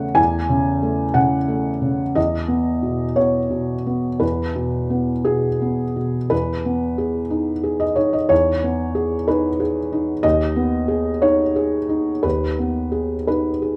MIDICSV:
0, 0, Header, 1, 2, 480
1, 0, Start_track
1, 0, Key_signature, 4, "major"
1, 0, Tempo, 665927
1, 127, Time_signature, 6, 3, 24, 8
1, 2049, Tempo, 690449
1, 4929, Tempo, 650759
1, 7809, Tempo, 684932
1, 9825, End_track
2, 0, Start_track
2, 0, Title_t, "Felt piano"
2, 0, Program_c, 0, 0
2, 0, Control_c, 0, 64, 127
2, 0, Note_on_c, 0, 40, 52
2, 0, Note_on_c, 0, 49, 34
2, 0, Note_on_c, 0, 57, 35
2, 0, Note_on_c, 0, 73, 73
2, 0, Note_on_c, 0, 78, 76
2, 95, Note_off_c, 0, 40, 0
2, 106, Note_on_c, 0, 80, 81
2, 114, Note_on_c, 0, 40, 55
2, 125, Note_off_c, 0, 78, 0
2, 138, Control_c, 0, 64, 0
2, 144, Note_off_c, 0, 73, 0
2, 146, Note_off_c, 0, 49, 0
2, 265, Control_c, 0, 64, 127
2, 268, Note_off_c, 0, 57, 0
2, 355, Note_on_c, 0, 49, 41
2, 595, Note_on_c, 0, 57, 38
2, 739, Note_off_c, 0, 49, 0
2, 822, Note_on_c, 0, 78, 69
2, 827, Note_on_c, 0, 49, 40
2, 828, Note_off_c, 0, 80, 0
2, 980, Note_off_c, 0, 57, 0
2, 1068, Note_on_c, 0, 57, 37
2, 1217, Note_off_c, 0, 49, 0
2, 1309, Note_on_c, 0, 49, 37
2, 1460, Note_off_c, 0, 57, 0
2, 1527, Note_off_c, 0, 40, 0
2, 1553, Note_on_c, 0, 75, 68
2, 1554, Note_off_c, 0, 78, 0
2, 1556, Note_on_c, 0, 40, 50
2, 1557, Note_off_c, 0, 49, 0
2, 1575, Control_c, 0, 64, 0
2, 1682, Control_c, 0, 64, 127
2, 1788, Note_on_c, 0, 59, 37
2, 2037, Note_on_c, 0, 47, 32
2, 2182, Note_off_c, 0, 59, 0
2, 2269, Note_on_c, 0, 73, 58
2, 2273, Note_on_c, 0, 59, 35
2, 2280, Note_off_c, 0, 75, 0
2, 2422, Note_off_c, 0, 47, 0
2, 2508, Note_on_c, 0, 47, 31
2, 2661, Note_off_c, 0, 59, 0
2, 2758, Note_on_c, 0, 59, 30
2, 2901, Note_off_c, 0, 47, 0
2, 2975, Note_off_c, 0, 40, 0
2, 2990, Note_on_c, 0, 71, 55
2, 2995, Note_on_c, 0, 40, 41
2, 2998, Note_off_c, 0, 73, 0
2, 3019, Control_c, 0, 64, 0
2, 3135, Control_c, 0, 64, 127
2, 3149, Note_off_c, 0, 59, 0
2, 3239, Note_on_c, 0, 47, 36
2, 3479, Note_on_c, 0, 59, 31
2, 3630, Note_off_c, 0, 47, 0
2, 3720, Note_on_c, 0, 68, 54
2, 3722, Note_on_c, 0, 47, 36
2, 3873, Note_off_c, 0, 59, 0
2, 3975, Note_on_c, 0, 59, 29
2, 4118, Note_off_c, 0, 47, 0
2, 4214, Note_off_c, 0, 71, 0
2, 4217, Note_on_c, 0, 47, 27
2, 4367, Note_off_c, 0, 59, 0
2, 4428, Note_off_c, 0, 40, 0
2, 4452, Note_on_c, 0, 71, 64
2, 4456, Note_off_c, 0, 68, 0
2, 4456, Note_on_c, 0, 40, 43
2, 4460, Note_off_c, 0, 47, 0
2, 4474, Control_c, 0, 64, 0
2, 4599, Control_c, 0, 64, 127
2, 4698, Note_on_c, 0, 59, 34
2, 4926, Note_on_c, 0, 68, 34
2, 5078, Note_off_c, 0, 59, 0
2, 5163, Note_on_c, 0, 63, 37
2, 5318, Note_off_c, 0, 68, 0
2, 5408, Note_on_c, 0, 68, 37
2, 5528, Note_on_c, 0, 75, 61
2, 5533, Note_off_c, 0, 71, 0
2, 5557, Note_off_c, 0, 63, 0
2, 5645, Note_on_c, 0, 73, 52
2, 5655, Note_off_c, 0, 75, 0
2, 5655, Note_on_c, 0, 63, 35
2, 5774, Note_off_c, 0, 73, 0
2, 5774, Note_on_c, 0, 75, 53
2, 5801, Note_off_c, 0, 68, 0
2, 5870, Note_off_c, 0, 40, 0
2, 5891, Note_on_c, 0, 73, 72
2, 5895, Note_on_c, 0, 40, 49
2, 5898, Note_off_c, 0, 75, 0
2, 5916, Control_c, 0, 64, 0
2, 6044, Control_c, 0, 64, 127
2, 6045, Note_off_c, 0, 63, 0
2, 6143, Note_on_c, 0, 59, 38
2, 6377, Note_on_c, 0, 68, 43
2, 6525, Note_off_c, 0, 59, 0
2, 6613, Note_off_c, 0, 73, 0
2, 6619, Note_on_c, 0, 71, 59
2, 6623, Note_on_c, 0, 63, 42
2, 6758, Note_off_c, 0, 68, 0
2, 6854, Note_off_c, 0, 71, 0
2, 6855, Note_on_c, 0, 68, 40
2, 6998, Note_off_c, 0, 63, 0
2, 7097, Note_on_c, 0, 63, 39
2, 7232, Note_off_c, 0, 68, 0
2, 7294, Note_off_c, 0, 40, 0
2, 7322, Note_on_c, 0, 75, 80
2, 7330, Note_on_c, 0, 39, 59
2, 7331, Note_off_c, 0, 63, 0
2, 7342, Control_c, 0, 64, 0
2, 7441, Control_c, 0, 64, 127
2, 7565, Note_on_c, 0, 59, 42
2, 7802, Note_on_c, 0, 68, 43
2, 7948, Note_off_c, 0, 59, 0
2, 8038, Note_on_c, 0, 73, 67
2, 8040, Note_off_c, 0, 75, 0
2, 8040, Note_on_c, 0, 63, 45
2, 8180, Note_off_c, 0, 68, 0
2, 8277, Note_on_c, 0, 68, 39
2, 8419, Note_off_c, 0, 63, 0
2, 8511, Note_on_c, 0, 63, 36
2, 8658, Note_off_c, 0, 68, 0
2, 8728, Note_off_c, 0, 39, 0
2, 8747, Note_on_c, 0, 71, 59
2, 8751, Note_on_c, 0, 39, 49
2, 8752, Note_off_c, 0, 73, 0
2, 8769, Control_c, 0, 64, 0
2, 8883, Control_c, 0, 64, 127
2, 8897, Note_off_c, 0, 63, 0
2, 9000, Note_on_c, 0, 59, 36
2, 9230, Note_on_c, 0, 68, 35
2, 9384, Note_off_c, 0, 59, 0
2, 9470, Note_off_c, 0, 71, 0
2, 9480, Note_on_c, 0, 71, 51
2, 9486, Note_on_c, 0, 63, 35
2, 9622, Note_off_c, 0, 68, 0
2, 9722, Note_on_c, 0, 68, 32
2, 9825, Note_off_c, 0, 39, 0
2, 9825, Note_off_c, 0, 63, 0
2, 9825, Note_off_c, 0, 68, 0
2, 9825, Note_off_c, 0, 71, 0
2, 9825, End_track
0, 0, End_of_file